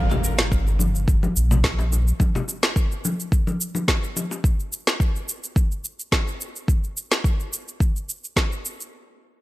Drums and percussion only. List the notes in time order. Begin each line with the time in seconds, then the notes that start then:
0.11 high bongo, low conga, shaker
0.24 shaker
0.39 snare, shaker
0.52 kick, shaker
0.67 shaker
0.79 high conga, shaker
0.95 shaker
1.08 kick, shaker
1.23 high conga, shaker
1.36 shaker
1.51 low conga, shaker
1.64 kick, snare, shaker
1.79 high bongo, shaker
1.92 high conga, shaker
2.08 shaker
2.20 kick, high conga, shaker
2.35 high bongo, low conga, shaker
2.48 high bongo, shaker
2.63 snare, shaker
2.76 kick, shaker
2.92 shaker
3.05 high conga, shaker
3.20 shaker
3.32 kick, shaker
3.47 high conga, shaker
3.61 shaker
3.75 high conga, shaker
3.88 kick, snare, shaker
4.04 shaker
4.16 high bongo, high conga, shaker
4.31 high bongo, shaker
4.44 kick, shaker
4.60 shaker
4.73 shaker
4.87 snare, shaker
5.00 kick, shaker
5.16 shaker
5.29 shaker
5.44 shaker
5.56 kick, shaker
5.72 shaker
5.85 shaker
6.00 shaker
6.12 kick, snare, shaker
6.28 shaker
6.41 shaker
6.56 shaker
6.68 kick, shaker
6.84 shaker
6.97 shaker
7.12 snare, shaker
7.24 kick, shaker
7.40 shaker
7.53 shaker
7.68 shaker
7.80 kick, shaker
7.96 shaker
8.09 shaker
8.24 shaker
8.37 kick, snare, shaker
8.52 shaker
8.65 shaker
8.81 shaker